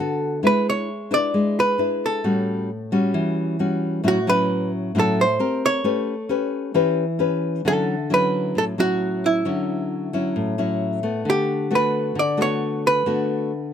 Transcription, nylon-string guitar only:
0.00 0.42 D3 medium
0.00 0.40 B3 medium
0.00 0.40 F#4 medium
0.00 0.41 A4 medium
0.43 1.31 G#3 medium
0.43 0.88 D4 soft
0.43 0.89 E4 soft
0.43 0.89 B4 soft
1.11 1.75 D4 medium
1.11 1.76 E4 medium
1.11 1.76 B4 medium
1.34 2.22 G#3 medium
1.78 2.20 D4 soft
1.78 2.21 E4 soft
1.78 2.21 B4 medium
2.24 3.12 A2 medium
2.24 2.69 G3 medium
2.24 2.69 C#4 medium
2.24 2.69 F#4 medium
2.92 3.56 G3 medium
2.92 3.56 C#4 medium
2.92 3.56 F#4 medium
3.14 4.02 E3 medium
3.59 4.01 G3 soft
3.59 4.01 C#4 soft
3.59 4.01 F#4 medium
4.04 4.92 A2 medium
4.04 4.17 F#3 soft
4.04 4.18 C#4 medium
4.04 4.18 E4 medium
4.27 4.91 F#3 medium
4.27 4.91 C#4 medium
4.27 4.92 E4 medium
4.95 5.38 A2 medium
4.95 5.24 F#3 medium
4.95 5.24 C#4 medium
4.95 5.24 E4 medium
5.39 5.81 C4 soft
5.39 5.81 G4 medium
5.39 5.81 A#4 medium
5.84 6.72 A3 medium
5.84 6.13 C#4 soft
5.84 6.14 G4 soft
5.84 6.14 B4 medium
6.29 6.71 C#4 medium
6.29 6.71 G4 soft
6.29 6.72 B4 medium
6.74 7.63 E3 medium
6.74 7.04 C#4 medium
6.74 7.04 G4 medium
6.74 7.04 B4 medium
7.19 7.61 C#4 medium
7.19 7.61 G4 medium
7.19 7.61 B4 medium
7.65 8.53 D3 medium
7.65 7.94 F#3 medium
7.65 7.94 C#4 medium
7.65 7.95 E4 medium
8.10 8.74 F#3 medium
8.10 8.74 C#4 medium
8.10 8.74 E4 medium
8.55 9.43 A2 medium
8.78 9.42 F#3 medium
8.78 9.42 C#4 medium
8.78 9.42 E4 medium
9.45 10.33 D3 medium
9.45 10.09 F#3 soft
9.45 10.09 C#4 medium
9.45 10.09 E4 medium
10.13 10.54 F#3 medium
10.13 10.55 C#4 medium
10.13 10.55 E4 medium
10.36 11.23 A2 medium
10.58 10.99 F#3 medium
10.58 11.00 C#4 medium
10.58 11.00 E4 medium
11.03 11.67 A3 medium
11.03 11.67 B3 medium
11.25 12.13 D3 medium
11.71 12.15 A3 medium
11.71 12.15 B3 medium
11.71 12.16 F#4 medium
12.15 13.03 D3 medium
12.37 13.02 A3 medium
12.37 13.02 B3 medium
12.37 13.02 F#4 medium
13.06 13.73 D3 medium
13.06 13.51 A3 medium
13.06 13.51 B3 soft
13.06 13.51 F#4 medium

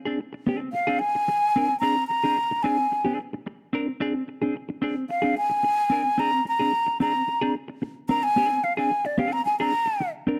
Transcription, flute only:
0.73 1.01 F5 medium
0.99 1.79 G#5 loud
1.80 2.07 A#5 loud
2.07 2.64 A#5 loud
2.63 3.18 G#5 medium
5.10 5.35 F5 medium
5.38 6.21 G#5 loud
6.19 6.46 A#5 loud
6.48 6.98 A#5 loud
7.01 7.52 A#5 medium
8.09 8.25 A#5 loud
8.23 8.65 G#5 loud
8.64 8.77 F5 loud
8.77 9.07 G#5 medium
9.06 9.20 D5 medium
9.18 9.34 F5 medium
9.32 9.45 A#5 loud
9.45 9.58 G#5 medium
9.60 10.10 A#5 loud

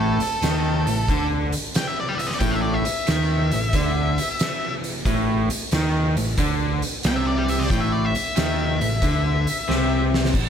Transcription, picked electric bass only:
0.00 0.17 A1 medium
0.21 muted picked electric bass stroke soft
0.42 0.84 D#2 medium
0.87 1.07 A1 medium
1.09 1.50 D2 medium
2.40 2.82 A1 loud
2.88 muted picked electric bass stroke soft
3.09 3.49 D#2 medium
3.53 3.73 A1 medium
3.74 4.15 D2 medium
5.05 5.47 A1 medium
5.51 muted picked electric bass stroke soft
5.72 6.14 D#2 medium
6.17 6.37 A1 medium
6.38 6.79 D2 medium
7.05 7.67 C2 medium
7.70 8.12 A1 medium
8.16 muted picked electric bass stroke soft
8.38 8.78 D#2 medium
8.82 9.01 A1 medium
9.02 9.43 D2 medium
9.69 10.31 C2 medium
10.34 10.49 A1 medium

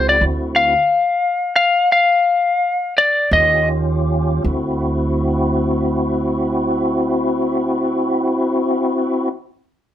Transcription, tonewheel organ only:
0.00 0.18 C4 medium
0.00 0.19 E4 medium
0.00 0.18 F#4 medium
0.21 0.74 C4 medium
0.21 0.74 E4 medium
0.21 0.75 F#4 medium
3.33 4.43 C#4 medium
3.33 4.44 F4 medium
3.33 4.43 G4 medium
4.45 9.29 C4 medium
4.45 9.29 E4 medium
4.45 9.29 F#4 medium

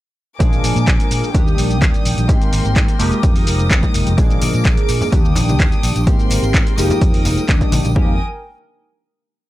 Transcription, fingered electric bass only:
0.40 0.60 A#1 loud
0.64 0.74 A#2 medium
0.76 0.85 A#2 loud
0.87 0.98 A#1 loud
1.11 1.21 A#2 medium
1.34 1.54 D#2 medium
1.58 1.82 A#1 medium
1.82 1.92 D#2 medium
2.05 2.16 A#1 loud
2.17 2.27 A#1 medium
2.29 2.49 G#2 loud
2.53 2.63 G#1 medium
2.65 2.74 G#1 loud
2.76 2.86 G#2 loud
3.00 3.10 F1 medium
3.23 3.43 F2 medium
3.47 3.72 F1 medium
3.71 3.81 F2 medium
3.95 4.05 F1 medium
4.07 4.16 F1 medium
4.18 4.38 A#1 loud
4.42 4.52 A#2 medium
4.54 4.63 A#2 loud
4.65 4.76 A#1 loud
4.89 4.99 A#2 loud
5.12 5.32 D#2 medium
5.36 5.60 A#1 medium
5.60 5.70 D#2 medium
5.83 5.94 A#1 loud
5.96 6.05 A#1 medium
6.07 6.27 G#2 loud
6.30 6.41 G#1 medium
6.43 6.52 G#1 loud
6.54 6.64 G#2 loud
6.78 6.88 F1 loud
7.01 7.21 F2 medium
7.25 7.35 F1 medium
7.37 muted fingered electric bass stroke soft
7.49 7.59 D#2 medium
7.72 7.83 A#1 medium
7.85 7.94 A#1 medium
7.96 8.18 F2 medium

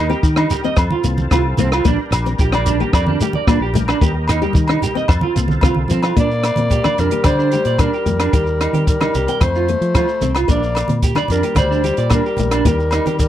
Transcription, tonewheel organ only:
0.00 0.77 D#4 medium
0.00 0.77 G4 medium
0.00 0.74 A#4 medium
0.78 1.84 C4 medium
0.78 1.85 F4 medium
0.78 1.85 A4 medium
1.85 3.99 D4 medium
1.85 3.99 G4 medium
1.85 5.06 A#4 medium
4.04 5.09 D#4 medium
4.04 5.09 G4 medium
5.09 6.17 C4 medium
5.09 6.16 F4 medium
5.09 6.16 A4 medium

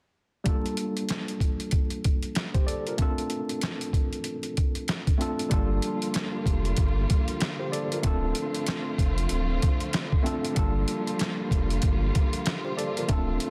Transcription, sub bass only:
5.52 5.80 G1 loud
6.46 6.74 F1 loud
6.78 7.06 G1 medium
8.04 8.32 D1 loud
8.99 9.27 F1 medium
9.31 9.59 D1 loud
10.57 10.85 G1 loud
11.51 11.79 F1 loud
11.83 12.11 G1 loud
13.10 13.38 D1 loud

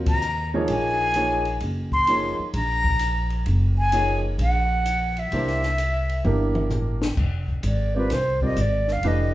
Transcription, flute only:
0.09 0.51 A#5 loud
0.70 1.58 G#5 loud
1.93 2.36 C6 loud
2.55 3.43 A#5 loud
3.78 4.21 G#5 loud
4.42 5.21 F#5 loud
5.19 6.72 E5 loud
7.67 7.95 D5 medium
7.97 8.14 B4 medium
8.13 8.43 C5 medium
8.45 8.63 D#5 medium
8.61 8.94 D5 medium
8.92 9.09 F5 medium
9.08 9.34 D#5 medium

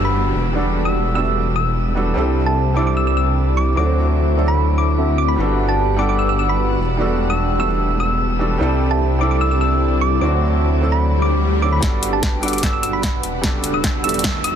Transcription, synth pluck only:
0.05 0.19 B5 medium
0.85 1.00 E6 medium
1.15 1.30 E6 medium
1.56 2.12 E6 medium
2.46 2.61 A5 medium
2.77 2.83 D6 medium
2.87 2.93 D6 medium
2.97 3.03 E6 medium
3.07 3.13 E6 medium
3.17 3.25 E6 medium
3.57 3.72 D6 medium
3.77 4.18 D6 medium
4.48 4.63 B5 medium
4.78 4.93 D6 medium
5.18 5.26 D6 medium
5.28 5.42 B5 medium
5.69 5.83 A5 medium
5.99 6.05 D6 medium
6.09 6.15 D6 medium
6.19 6.25 E6 medium
6.29 6.35 E6 medium
6.39 6.47 E6 medium
6.49 6.64 B5 medium
7.30 7.44 E6 medium
7.60 7.75 E6 medium
8.00 8.56 E6 medium
8.91 9.05 A5 medium
9.21 9.27 D6 medium
9.31 9.37 D6 medium
9.41 9.47 E6 medium
9.51 9.58 E6 medium
9.61 9.69 E6 medium
10.01 10.16 D6 medium
10.21 10.62 D6 medium
10.92 11.07 B5 medium
11.22 11.37 D6 medium
11.62 11.71 D6 medium
11.73 11.83 B5 medium
12.13 12.28 A5 medium
12.43 12.49 D6 medium
12.53 12.59 D6 medium
12.63 12.70 E6 medium
12.73 12.80 E6 medium
12.83 12.91 E6 medium
12.93 13.08 B5 medium
13.74 13.89 E6 medium
14.04 14.19 E6 medium
14.44 14.55 E6 medium

